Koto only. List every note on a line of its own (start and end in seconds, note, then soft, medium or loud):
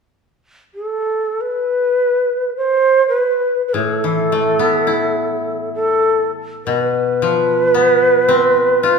3.74 6.67 A2 soft
4.04 6.23 E3 soft
4.32 6.50 A3 soft
4.59 6.76 B3 soft
4.87 7.03 E4 soft
6.67 8.99 B2 soft
7.22 8.99 F3 soft
7.74 8.99 B3 soft
8.29 8.99 C4 soft
8.83 8.99 F4 soft